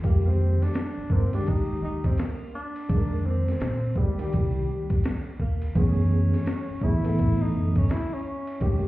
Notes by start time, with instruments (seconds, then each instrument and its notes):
0.02 upright bass F2, tine electric piano D#3 G#3 A#3 G4, tenor saxophone A#3, kick, ride
0.27 tenor saxophone C4
0.62 tenor saxophone D4, snare, ride
0.74 snare, hi-hat pedal, ride
0.98 muted upright bass stroke
1.09 upright bass G2, tine electric piano D#3 G#3 A#3 A#4, tenor saxophone C4, kick
1.32 tine electric piano D#3 G#3 A#3 G4, tenor saxophone D4, ride
1.47 tenor saxophone D#4, kick, ride
1.69 muted upright bass stroke
1.82 upright bass D#2, tenor saxophone D#4
2.04 tenor saxophone C4, kick, ride
2.18 tenor saxophone A#3, snare, hi-hat pedal, ride
2.55 tenor saxophone D4
2.76 ride
2.88 upright bass F2, tine electric piano D#3 G#3 A#3 G#4, kick, ride
2.97 tine electric piano A#4
3.26 tenor saxophone C4
3.48 snare, ride
3.60 upright bass A#2, snare, hi-hat pedal, ride
3.95 tine electric piano D#3 G#3 A#3 G4, tenor saxophone G3, kick
4.18 tine electric piano D#3 G3 A#3 G4, ride
4.33 upright bass C2, kick, ride
4.90 kick, ride
5.04 snare, hi-hat pedal, ride
5.40 upright bass D#2, tenor saxophone A#3, kick
5.62 ride
5.75 upright bass F#2, tine electric piano E3 A3 B3 G#4, tenor saxophone C#4, kick, ride
6.34 snare, ride
6.46 snare, hi-hat pedal, ride
6.70 muted upright bass stroke
6.81 upright bass A2, tine electric piano E3 A3 B3 G#4, tenor saxophone E4, kick
7.04 tine electric piano E3 A3 B3 A4, ride
7.18 kick, ride
7.42 tenor saxophone D#4
7.54 upright bass F#2
7.76 tenor saxophone C#4, kick, ride
7.89 tenor saxophone E4, snare, hi-hat pedal, ride
8.14 tenor saxophone C#4
8.47 ride
8.60 upright bass F2, tine electric piano D#3 G#3 A#3 G4, kick, ride